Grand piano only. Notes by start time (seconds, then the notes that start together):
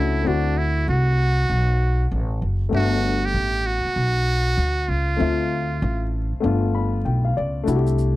Already playing: A3 C#4 D4 F#4
0.22 A3 C4 E4
0.28 F#4
2.69 A3 B3 D4
2.74 E5
5.17 A3 C4 E5
5.22 F4
6.40 A3 B3 D4
6.46 F4
6.75 B5
7.05 G5
7.25 F5
7.37 D5
7.63 A3 D4
7.68 E4 F#4
7.76 G4